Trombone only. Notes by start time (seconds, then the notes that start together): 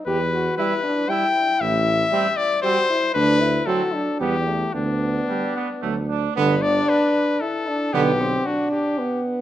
0.58 G3
1.08 G3
2.11 G3
2.62 G3
3.66 F#3
4.19 G3
5.28 G3
5.83 F#3
6.37 D3
7.93 D3